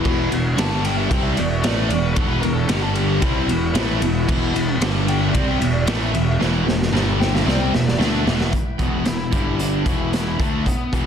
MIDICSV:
0, 0, Header, 1, 6, 480
1, 0, Start_track
1, 0, Key_signature, 1, "minor"
1, 0, Tempo, 530504
1, 51, Time_signature, 4, 2, 24, 8
1, 10010, End_track
2, 0, Start_track
2, 0, Title_t, "Lead electric guitar"
2, 0, Program_c, 0, 29
2, 0, Note_on_c, 0, 64, 101
2, 273, Note_off_c, 0, 64, 0
2, 532, Note_on_c, 0, 81, 95
2, 762, Note_off_c, 0, 81, 0
2, 765, Note_on_c, 0, 79, 89
2, 876, Note_off_c, 0, 79, 0
2, 876, Note_on_c, 0, 76, 89
2, 993, Note_off_c, 0, 76, 0
2, 993, Note_on_c, 0, 79, 96
2, 1111, Note_off_c, 0, 79, 0
2, 1111, Note_on_c, 0, 76, 89
2, 1230, Note_on_c, 0, 74, 89
2, 1234, Note_off_c, 0, 76, 0
2, 1353, Note_off_c, 0, 74, 0
2, 1359, Note_on_c, 0, 76, 93
2, 1463, Note_on_c, 0, 74, 84
2, 1478, Note_off_c, 0, 76, 0
2, 1598, Note_off_c, 0, 74, 0
2, 1598, Note_on_c, 0, 71, 84
2, 1710, Note_off_c, 0, 71, 0
2, 1714, Note_on_c, 0, 74, 91
2, 1834, Note_off_c, 0, 74, 0
2, 1834, Note_on_c, 0, 71, 89
2, 1943, Note_off_c, 0, 71, 0
2, 1943, Note_on_c, 0, 69, 91
2, 2061, Note_off_c, 0, 69, 0
2, 2061, Note_on_c, 0, 71, 80
2, 2183, Note_off_c, 0, 71, 0
2, 2186, Note_on_c, 0, 70, 97
2, 2293, Note_off_c, 0, 70, 0
2, 2296, Note_on_c, 0, 69, 82
2, 2436, Note_off_c, 0, 69, 0
2, 2436, Note_on_c, 0, 67, 86
2, 2553, Note_off_c, 0, 67, 0
2, 2553, Note_on_c, 0, 69, 88
2, 2664, Note_off_c, 0, 69, 0
2, 2667, Note_on_c, 0, 67, 93
2, 2906, Note_off_c, 0, 67, 0
2, 2909, Note_on_c, 0, 64, 99
2, 4315, Note_off_c, 0, 64, 0
2, 4602, Note_on_c, 0, 79, 99
2, 4711, Note_on_c, 0, 76, 91
2, 4716, Note_off_c, 0, 79, 0
2, 4819, Note_off_c, 0, 76, 0
2, 4822, Note_on_c, 0, 74, 98
2, 4945, Note_off_c, 0, 74, 0
2, 4953, Note_on_c, 0, 79, 82
2, 5061, Note_on_c, 0, 76, 95
2, 5071, Note_off_c, 0, 79, 0
2, 5185, Note_off_c, 0, 76, 0
2, 5185, Note_on_c, 0, 74, 91
2, 5302, Note_off_c, 0, 74, 0
2, 5306, Note_on_c, 0, 76, 107
2, 5776, Note_off_c, 0, 76, 0
2, 6517, Note_on_c, 0, 79, 96
2, 6632, Note_off_c, 0, 79, 0
2, 6642, Note_on_c, 0, 76, 101
2, 6749, Note_off_c, 0, 76, 0
2, 6752, Note_on_c, 0, 74, 98
2, 6867, Note_on_c, 0, 79, 99
2, 6871, Note_off_c, 0, 74, 0
2, 6988, Note_off_c, 0, 79, 0
2, 6996, Note_on_c, 0, 76, 94
2, 7113, Note_off_c, 0, 76, 0
2, 7119, Note_on_c, 0, 74, 96
2, 7234, Note_off_c, 0, 74, 0
2, 7238, Note_on_c, 0, 76, 102
2, 7704, Note_off_c, 0, 76, 0
2, 7956, Note_on_c, 0, 59, 83
2, 8195, Note_on_c, 0, 64, 94
2, 8206, Note_off_c, 0, 59, 0
2, 8422, Note_off_c, 0, 64, 0
2, 8441, Note_on_c, 0, 64, 93
2, 8686, Note_off_c, 0, 64, 0
2, 8690, Note_on_c, 0, 62, 88
2, 8928, Note_off_c, 0, 62, 0
2, 8932, Note_on_c, 0, 64, 85
2, 9158, Note_off_c, 0, 64, 0
2, 9169, Note_on_c, 0, 64, 86
2, 9417, Note_off_c, 0, 64, 0
2, 9426, Note_on_c, 0, 57, 78
2, 9652, Note_off_c, 0, 57, 0
2, 9656, Note_on_c, 0, 59, 82
2, 9878, Note_off_c, 0, 59, 0
2, 9900, Note_on_c, 0, 59, 80
2, 10010, Note_off_c, 0, 59, 0
2, 10010, End_track
3, 0, Start_track
3, 0, Title_t, "Tonewheel organ"
3, 0, Program_c, 1, 16
3, 30, Note_on_c, 1, 52, 70
3, 32, Note_on_c, 1, 59, 68
3, 37, Note_on_c, 1, 66, 76
3, 513, Note_off_c, 1, 52, 0
3, 514, Note_off_c, 1, 59, 0
3, 517, Note_off_c, 1, 66, 0
3, 524, Note_on_c, 1, 55, 67
3, 527, Note_on_c, 1, 69, 78
3, 529, Note_on_c, 1, 62, 65
3, 999, Note_off_c, 1, 55, 0
3, 1000, Note_on_c, 1, 66, 70
3, 1001, Note_off_c, 1, 69, 0
3, 1002, Note_off_c, 1, 62, 0
3, 1002, Note_on_c, 1, 59, 59
3, 1007, Note_on_c, 1, 52, 66
3, 2424, Note_off_c, 1, 66, 0
3, 2425, Note_off_c, 1, 59, 0
3, 2427, Note_on_c, 1, 55, 69
3, 2428, Note_off_c, 1, 52, 0
3, 2432, Note_on_c, 1, 69, 79
3, 2440, Note_on_c, 1, 62, 64
3, 2908, Note_off_c, 1, 55, 0
3, 2911, Note_off_c, 1, 69, 0
3, 2911, Note_on_c, 1, 59, 57
3, 2915, Note_off_c, 1, 62, 0
3, 2916, Note_on_c, 1, 52, 63
3, 2924, Note_on_c, 1, 66, 69
3, 4338, Note_off_c, 1, 59, 0
3, 4340, Note_off_c, 1, 52, 0
3, 4341, Note_on_c, 1, 69, 79
3, 4345, Note_off_c, 1, 66, 0
3, 4346, Note_on_c, 1, 62, 66
3, 4347, Note_on_c, 1, 55, 67
3, 4823, Note_off_c, 1, 69, 0
3, 4826, Note_off_c, 1, 55, 0
3, 4826, Note_off_c, 1, 62, 0
3, 4827, Note_on_c, 1, 66, 69
3, 4829, Note_on_c, 1, 59, 57
3, 4837, Note_on_c, 1, 52, 68
3, 6256, Note_off_c, 1, 66, 0
3, 6257, Note_off_c, 1, 59, 0
3, 6261, Note_off_c, 1, 52, 0
3, 6291, Note_on_c, 1, 55, 72
3, 6291, Note_on_c, 1, 69, 78
3, 6301, Note_on_c, 1, 62, 65
3, 6739, Note_on_c, 1, 66, 71
3, 6741, Note_on_c, 1, 59, 58
3, 6745, Note_on_c, 1, 52, 66
3, 6759, Note_off_c, 1, 55, 0
3, 6759, Note_off_c, 1, 69, 0
3, 6764, Note_off_c, 1, 62, 0
3, 7700, Note_off_c, 1, 66, 0
3, 7701, Note_off_c, 1, 59, 0
3, 7703, Note_off_c, 1, 52, 0
3, 7713, Note_on_c, 1, 79, 68
3, 7714, Note_on_c, 1, 64, 60
3, 7719, Note_on_c, 1, 71, 59
3, 8432, Note_off_c, 1, 64, 0
3, 8435, Note_off_c, 1, 71, 0
3, 8441, Note_on_c, 1, 62, 66
3, 8454, Note_on_c, 1, 67, 60
3, 8901, Note_off_c, 1, 79, 0
3, 8912, Note_on_c, 1, 79, 71
3, 8917, Note_on_c, 1, 71, 54
3, 8920, Note_off_c, 1, 62, 0
3, 8920, Note_on_c, 1, 64, 61
3, 8926, Note_off_c, 1, 67, 0
3, 10010, Note_off_c, 1, 64, 0
3, 10010, Note_off_c, 1, 71, 0
3, 10010, Note_off_c, 1, 79, 0
3, 10010, End_track
4, 0, Start_track
4, 0, Title_t, "Overdriven electric guitar"
4, 0, Program_c, 2, 29
4, 45, Note_on_c, 2, 40, 103
4, 51, Note_on_c, 2, 47, 106
4, 56, Note_on_c, 2, 52, 104
4, 271, Note_off_c, 2, 40, 0
4, 278, Note_off_c, 2, 47, 0
4, 282, Note_on_c, 2, 40, 63
4, 285, Note_off_c, 2, 52, 0
4, 289, Note_on_c, 2, 47, 73
4, 477, Note_off_c, 2, 40, 0
4, 480, Note_off_c, 2, 47, 0
4, 512, Note_on_c, 2, 43, 96
4, 517, Note_on_c, 2, 50, 96
4, 528, Note_on_c, 2, 55, 110
4, 991, Note_off_c, 2, 43, 0
4, 991, Note_off_c, 2, 50, 0
4, 992, Note_off_c, 2, 55, 0
4, 995, Note_on_c, 2, 48, 89
4, 1003, Note_on_c, 2, 55, 94
4, 1007, Note_on_c, 2, 60, 99
4, 1232, Note_off_c, 2, 48, 0
4, 1237, Note_off_c, 2, 55, 0
4, 1239, Note_off_c, 2, 60, 0
4, 1241, Note_on_c, 2, 47, 67
4, 1244, Note_on_c, 2, 40, 63
4, 1435, Note_off_c, 2, 47, 0
4, 1436, Note_off_c, 2, 40, 0
4, 1471, Note_on_c, 2, 45, 94
4, 1475, Note_on_c, 2, 52, 101
4, 1481, Note_on_c, 2, 57, 102
4, 1710, Note_off_c, 2, 45, 0
4, 1712, Note_off_c, 2, 52, 0
4, 1715, Note_off_c, 2, 57, 0
4, 1728, Note_on_c, 2, 40, 69
4, 1735, Note_on_c, 2, 47, 73
4, 1917, Note_off_c, 2, 40, 0
4, 1921, Note_off_c, 2, 47, 0
4, 1961, Note_on_c, 2, 40, 94
4, 1967, Note_on_c, 2, 47, 98
4, 1972, Note_on_c, 2, 52, 110
4, 2194, Note_off_c, 2, 40, 0
4, 2197, Note_off_c, 2, 47, 0
4, 2200, Note_off_c, 2, 52, 0
4, 2208, Note_on_c, 2, 40, 64
4, 2213, Note_on_c, 2, 47, 74
4, 2397, Note_off_c, 2, 40, 0
4, 2399, Note_off_c, 2, 47, 0
4, 2438, Note_on_c, 2, 43, 86
4, 2441, Note_on_c, 2, 50, 97
4, 2446, Note_on_c, 2, 55, 96
4, 2911, Note_off_c, 2, 43, 0
4, 2913, Note_off_c, 2, 50, 0
4, 2913, Note_off_c, 2, 55, 0
4, 2920, Note_on_c, 2, 48, 98
4, 2924, Note_on_c, 2, 55, 101
4, 2929, Note_on_c, 2, 60, 94
4, 3148, Note_on_c, 2, 40, 55
4, 3152, Note_off_c, 2, 48, 0
4, 3154, Note_off_c, 2, 55, 0
4, 3156, Note_on_c, 2, 47, 75
4, 3157, Note_off_c, 2, 60, 0
4, 3345, Note_off_c, 2, 40, 0
4, 3349, Note_off_c, 2, 47, 0
4, 3385, Note_on_c, 2, 45, 92
4, 3389, Note_on_c, 2, 52, 100
4, 3395, Note_on_c, 2, 57, 105
4, 3624, Note_off_c, 2, 45, 0
4, 3626, Note_off_c, 2, 52, 0
4, 3630, Note_off_c, 2, 57, 0
4, 3634, Note_on_c, 2, 40, 71
4, 3637, Note_on_c, 2, 47, 81
4, 3828, Note_off_c, 2, 40, 0
4, 3829, Note_off_c, 2, 47, 0
4, 3872, Note_on_c, 2, 40, 105
4, 3875, Note_on_c, 2, 47, 100
4, 3878, Note_on_c, 2, 52, 115
4, 4107, Note_off_c, 2, 40, 0
4, 4109, Note_off_c, 2, 47, 0
4, 4110, Note_off_c, 2, 52, 0
4, 4119, Note_on_c, 2, 47, 72
4, 4120, Note_on_c, 2, 40, 64
4, 4310, Note_off_c, 2, 40, 0
4, 4310, Note_off_c, 2, 47, 0
4, 4358, Note_on_c, 2, 43, 94
4, 4364, Note_on_c, 2, 50, 103
4, 4371, Note_on_c, 2, 55, 96
4, 4828, Note_off_c, 2, 50, 0
4, 4829, Note_off_c, 2, 55, 0
4, 4830, Note_off_c, 2, 43, 0
4, 4832, Note_on_c, 2, 48, 90
4, 4839, Note_on_c, 2, 55, 95
4, 4839, Note_on_c, 2, 60, 96
4, 5067, Note_off_c, 2, 48, 0
4, 5070, Note_off_c, 2, 55, 0
4, 5070, Note_off_c, 2, 60, 0
4, 5076, Note_on_c, 2, 40, 54
4, 5081, Note_on_c, 2, 47, 68
4, 5267, Note_off_c, 2, 40, 0
4, 5270, Note_off_c, 2, 47, 0
4, 5312, Note_on_c, 2, 45, 91
4, 5318, Note_on_c, 2, 57, 92
4, 5319, Note_on_c, 2, 52, 99
4, 5546, Note_off_c, 2, 45, 0
4, 5550, Note_off_c, 2, 52, 0
4, 5550, Note_off_c, 2, 57, 0
4, 5556, Note_on_c, 2, 40, 72
4, 5557, Note_on_c, 2, 47, 77
4, 5747, Note_off_c, 2, 40, 0
4, 5748, Note_off_c, 2, 47, 0
4, 5784, Note_on_c, 2, 40, 98
4, 5787, Note_on_c, 2, 47, 98
4, 5795, Note_on_c, 2, 52, 106
4, 6012, Note_off_c, 2, 40, 0
4, 6021, Note_off_c, 2, 47, 0
4, 6023, Note_on_c, 2, 40, 62
4, 6028, Note_off_c, 2, 52, 0
4, 6032, Note_on_c, 2, 47, 73
4, 6221, Note_off_c, 2, 40, 0
4, 6225, Note_off_c, 2, 47, 0
4, 6267, Note_on_c, 2, 43, 83
4, 6268, Note_on_c, 2, 50, 96
4, 6274, Note_on_c, 2, 55, 107
4, 6734, Note_off_c, 2, 55, 0
4, 6735, Note_off_c, 2, 50, 0
4, 6739, Note_on_c, 2, 48, 90
4, 6743, Note_on_c, 2, 60, 103
4, 6744, Note_off_c, 2, 43, 0
4, 6745, Note_on_c, 2, 55, 104
4, 6981, Note_off_c, 2, 48, 0
4, 6983, Note_off_c, 2, 55, 0
4, 6983, Note_off_c, 2, 60, 0
4, 6989, Note_on_c, 2, 40, 59
4, 6994, Note_on_c, 2, 47, 61
4, 7185, Note_off_c, 2, 40, 0
4, 7188, Note_off_c, 2, 47, 0
4, 7225, Note_on_c, 2, 50, 95
4, 7229, Note_on_c, 2, 57, 98
4, 7230, Note_on_c, 2, 62, 101
4, 7461, Note_on_c, 2, 40, 100
4, 7464, Note_off_c, 2, 50, 0
4, 7464, Note_off_c, 2, 57, 0
4, 7467, Note_off_c, 2, 62, 0
4, 7467, Note_on_c, 2, 52, 116
4, 7469, Note_on_c, 2, 47, 102
4, 7703, Note_off_c, 2, 40, 0
4, 7706, Note_off_c, 2, 52, 0
4, 7707, Note_off_c, 2, 47, 0
4, 7963, Note_on_c, 2, 40, 76
4, 7963, Note_on_c, 2, 47, 76
4, 7968, Note_on_c, 2, 52, 83
4, 8184, Note_off_c, 2, 40, 0
4, 8192, Note_off_c, 2, 47, 0
4, 8195, Note_on_c, 2, 40, 57
4, 8197, Note_off_c, 2, 52, 0
4, 8203, Note_on_c, 2, 47, 67
4, 8391, Note_off_c, 2, 40, 0
4, 8395, Note_off_c, 2, 47, 0
4, 8439, Note_on_c, 2, 43, 80
4, 8446, Note_on_c, 2, 50, 93
4, 8449, Note_on_c, 2, 55, 91
4, 8916, Note_off_c, 2, 43, 0
4, 8920, Note_off_c, 2, 50, 0
4, 8921, Note_off_c, 2, 55, 0
4, 8921, Note_on_c, 2, 40, 85
4, 8925, Note_on_c, 2, 47, 76
4, 8930, Note_on_c, 2, 52, 85
4, 9399, Note_off_c, 2, 40, 0
4, 9401, Note_off_c, 2, 47, 0
4, 9404, Note_off_c, 2, 52, 0
4, 9408, Note_on_c, 2, 50, 82
4, 9410, Note_on_c, 2, 57, 90
4, 9417, Note_on_c, 2, 62, 102
4, 9643, Note_off_c, 2, 50, 0
4, 9643, Note_off_c, 2, 57, 0
4, 9647, Note_off_c, 2, 62, 0
4, 9891, Note_on_c, 2, 40, 78
4, 9892, Note_on_c, 2, 47, 85
4, 9894, Note_on_c, 2, 52, 99
4, 10010, Note_off_c, 2, 40, 0
4, 10010, Note_off_c, 2, 47, 0
4, 10010, Note_off_c, 2, 52, 0
4, 10010, End_track
5, 0, Start_track
5, 0, Title_t, "Picked electric bass"
5, 0, Program_c, 3, 34
5, 41, Note_on_c, 3, 28, 91
5, 267, Note_off_c, 3, 28, 0
5, 286, Note_on_c, 3, 28, 74
5, 510, Note_off_c, 3, 28, 0
5, 517, Note_on_c, 3, 31, 91
5, 967, Note_off_c, 3, 31, 0
5, 1004, Note_on_c, 3, 36, 102
5, 1227, Note_off_c, 3, 36, 0
5, 1248, Note_on_c, 3, 28, 78
5, 1469, Note_off_c, 3, 28, 0
5, 1481, Note_on_c, 3, 33, 94
5, 1705, Note_off_c, 3, 33, 0
5, 1718, Note_on_c, 3, 28, 78
5, 1943, Note_off_c, 3, 28, 0
5, 1962, Note_on_c, 3, 28, 98
5, 2185, Note_off_c, 3, 28, 0
5, 2205, Note_on_c, 3, 28, 77
5, 2424, Note_off_c, 3, 28, 0
5, 2430, Note_on_c, 3, 31, 95
5, 2880, Note_off_c, 3, 31, 0
5, 2913, Note_on_c, 3, 36, 99
5, 3139, Note_off_c, 3, 36, 0
5, 3149, Note_on_c, 3, 28, 74
5, 3376, Note_off_c, 3, 28, 0
5, 3392, Note_on_c, 3, 33, 93
5, 3618, Note_off_c, 3, 33, 0
5, 3631, Note_on_c, 3, 28, 81
5, 3857, Note_off_c, 3, 28, 0
5, 3872, Note_on_c, 3, 28, 96
5, 4097, Note_off_c, 3, 28, 0
5, 4104, Note_on_c, 3, 28, 76
5, 4333, Note_off_c, 3, 28, 0
5, 4348, Note_on_c, 3, 31, 99
5, 4798, Note_off_c, 3, 31, 0
5, 4838, Note_on_c, 3, 36, 98
5, 5058, Note_off_c, 3, 36, 0
5, 5063, Note_on_c, 3, 28, 81
5, 5292, Note_off_c, 3, 28, 0
5, 5308, Note_on_c, 3, 33, 100
5, 5534, Note_off_c, 3, 33, 0
5, 5546, Note_on_c, 3, 28, 85
5, 5774, Note_off_c, 3, 28, 0
5, 5781, Note_on_c, 3, 28, 91
5, 6011, Note_off_c, 3, 28, 0
5, 6025, Note_on_c, 3, 28, 72
5, 6253, Note_off_c, 3, 28, 0
5, 6261, Note_on_c, 3, 31, 97
5, 6714, Note_off_c, 3, 31, 0
5, 6751, Note_on_c, 3, 36, 103
5, 6977, Note_off_c, 3, 36, 0
5, 6994, Note_on_c, 3, 28, 82
5, 7219, Note_off_c, 3, 28, 0
5, 7235, Note_on_c, 3, 38, 92
5, 7460, Note_off_c, 3, 38, 0
5, 7481, Note_on_c, 3, 28, 104
5, 7704, Note_off_c, 3, 28, 0
5, 7955, Note_on_c, 3, 28, 78
5, 8181, Note_off_c, 3, 28, 0
5, 8199, Note_on_c, 3, 28, 70
5, 8424, Note_off_c, 3, 28, 0
5, 8436, Note_on_c, 3, 31, 86
5, 8888, Note_off_c, 3, 31, 0
5, 8918, Note_on_c, 3, 28, 85
5, 9371, Note_off_c, 3, 28, 0
5, 9403, Note_on_c, 3, 38, 92
5, 9631, Note_off_c, 3, 38, 0
5, 9885, Note_on_c, 3, 28, 77
5, 10010, Note_off_c, 3, 28, 0
5, 10010, End_track
6, 0, Start_track
6, 0, Title_t, "Drums"
6, 46, Note_on_c, 9, 36, 99
6, 48, Note_on_c, 9, 49, 88
6, 137, Note_off_c, 9, 36, 0
6, 138, Note_off_c, 9, 49, 0
6, 288, Note_on_c, 9, 51, 69
6, 379, Note_off_c, 9, 51, 0
6, 527, Note_on_c, 9, 51, 105
6, 533, Note_on_c, 9, 38, 116
6, 618, Note_off_c, 9, 51, 0
6, 623, Note_off_c, 9, 38, 0
6, 765, Note_on_c, 9, 51, 82
6, 856, Note_off_c, 9, 51, 0
6, 1003, Note_on_c, 9, 36, 101
6, 1007, Note_on_c, 9, 51, 94
6, 1094, Note_off_c, 9, 36, 0
6, 1097, Note_off_c, 9, 51, 0
6, 1240, Note_on_c, 9, 51, 73
6, 1330, Note_off_c, 9, 51, 0
6, 1481, Note_on_c, 9, 51, 101
6, 1487, Note_on_c, 9, 38, 108
6, 1572, Note_off_c, 9, 51, 0
6, 1577, Note_off_c, 9, 38, 0
6, 1722, Note_on_c, 9, 51, 74
6, 1812, Note_off_c, 9, 51, 0
6, 1957, Note_on_c, 9, 51, 85
6, 1959, Note_on_c, 9, 36, 103
6, 2047, Note_off_c, 9, 51, 0
6, 2050, Note_off_c, 9, 36, 0
6, 2196, Note_on_c, 9, 51, 64
6, 2287, Note_off_c, 9, 51, 0
6, 2432, Note_on_c, 9, 51, 101
6, 2438, Note_on_c, 9, 38, 112
6, 2523, Note_off_c, 9, 51, 0
6, 2528, Note_off_c, 9, 38, 0
6, 2673, Note_on_c, 9, 51, 79
6, 2763, Note_off_c, 9, 51, 0
6, 2913, Note_on_c, 9, 51, 82
6, 2916, Note_on_c, 9, 36, 102
6, 3003, Note_off_c, 9, 51, 0
6, 3006, Note_off_c, 9, 36, 0
6, 3159, Note_on_c, 9, 51, 70
6, 3250, Note_off_c, 9, 51, 0
6, 3393, Note_on_c, 9, 51, 100
6, 3399, Note_on_c, 9, 38, 120
6, 3484, Note_off_c, 9, 51, 0
6, 3489, Note_off_c, 9, 38, 0
6, 3636, Note_on_c, 9, 51, 74
6, 3727, Note_off_c, 9, 51, 0
6, 3879, Note_on_c, 9, 36, 102
6, 3879, Note_on_c, 9, 57, 84
6, 3969, Note_off_c, 9, 36, 0
6, 3970, Note_off_c, 9, 57, 0
6, 4124, Note_on_c, 9, 51, 70
6, 4214, Note_off_c, 9, 51, 0
6, 4357, Note_on_c, 9, 51, 114
6, 4362, Note_on_c, 9, 38, 114
6, 4447, Note_off_c, 9, 51, 0
6, 4453, Note_off_c, 9, 38, 0
6, 4598, Note_on_c, 9, 51, 77
6, 4689, Note_off_c, 9, 51, 0
6, 4837, Note_on_c, 9, 36, 100
6, 4837, Note_on_c, 9, 51, 97
6, 4927, Note_off_c, 9, 51, 0
6, 4928, Note_off_c, 9, 36, 0
6, 5081, Note_on_c, 9, 51, 80
6, 5171, Note_off_c, 9, 51, 0
6, 5314, Note_on_c, 9, 51, 109
6, 5319, Note_on_c, 9, 38, 113
6, 5405, Note_off_c, 9, 51, 0
6, 5410, Note_off_c, 9, 38, 0
6, 5560, Note_on_c, 9, 51, 79
6, 5650, Note_off_c, 9, 51, 0
6, 5799, Note_on_c, 9, 38, 59
6, 5889, Note_off_c, 9, 38, 0
6, 6047, Note_on_c, 9, 38, 69
6, 6138, Note_off_c, 9, 38, 0
6, 6172, Note_on_c, 9, 38, 62
6, 6263, Note_off_c, 9, 38, 0
6, 6292, Note_on_c, 9, 38, 82
6, 6382, Note_off_c, 9, 38, 0
6, 6528, Note_on_c, 9, 38, 88
6, 6618, Note_off_c, 9, 38, 0
6, 6653, Note_on_c, 9, 38, 71
6, 6744, Note_off_c, 9, 38, 0
6, 6770, Note_on_c, 9, 38, 82
6, 6861, Note_off_c, 9, 38, 0
6, 7007, Note_on_c, 9, 38, 96
6, 7097, Note_off_c, 9, 38, 0
6, 7133, Note_on_c, 9, 38, 81
6, 7223, Note_off_c, 9, 38, 0
6, 7247, Note_on_c, 9, 38, 106
6, 7337, Note_off_c, 9, 38, 0
6, 7486, Note_on_c, 9, 38, 109
6, 7577, Note_off_c, 9, 38, 0
6, 7605, Note_on_c, 9, 38, 92
6, 7695, Note_off_c, 9, 38, 0
6, 7715, Note_on_c, 9, 42, 75
6, 7717, Note_on_c, 9, 36, 88
6, 7805, Note_off_c, 9, 42, 0
6, 7808, Note_off_c, 9, 36, 0
6, 7954, Note_on_c, 9, 42, 58
6, 7956, Note_on_c, 9, 36, 98
6, 8044, Note_off_c, 9, 42, 0
6, 8046, Note_off_c, 9, 36, 0
6, 8193, Note_on_c, 9, 42, 84
6, 8198, Note_on_c, 9, 38, 112
6, 8283, Note_off_c, 9, 42, 0
6, 8289, Note_off_c, 9, 38, 0
6, 8438, Note_on_c, 9, 36, 97
6, 8438, Note_on_c, 9, 42, 69
6, 8528, Note_off_c, 9, 36, 0
6, 8529, Note_off_c, 9, 42, 0
6, 8680, Note_on_c, 9, 42, 74
6, 8770, Note_off_c, 9, 42, 0
6, 8920, Note_on_c, 9, 36, 100
6, 8920, Note_on_c, 9, 42, 58
6, 9010, Note_off_c, 9, 42, 0
6, 9011, Note_off_c, 9, 36, 0
6, 9167, Note_on_c, 9, 42, 76
6, 9173, Note_on_c, 9, 38, 98
6, 9258, Note_off_c, 9, 42, 0
6, 9263, Note_off_c, 9, 38, 0
6, 9406, Note_on_c, 9, 36, 94
6, 9415, Note_on_c, 9, 42, 60
6, 9497, Note_off_c, 9, 36, 0
6, 9506, Note_off_c, 9, 42, 0
6, 9647, Note_on_c, 9, 36, 84
6, 9654, Note_on_c, 9, 42, 72
6, 9737, Note_off_c, 9, 36, 0
6, 9744, Note_off_c, 9, 42, 0
6, 9887, Note_on_c, 9, 36, 95
6, 9893, Note_on_c, 9, 42, 53
6, 9978, Note_off_c, 9, 36, 0
6, 9984, Note_off_c, 9, 42, 0
6, 10010, End_track
0, 0, End_of_file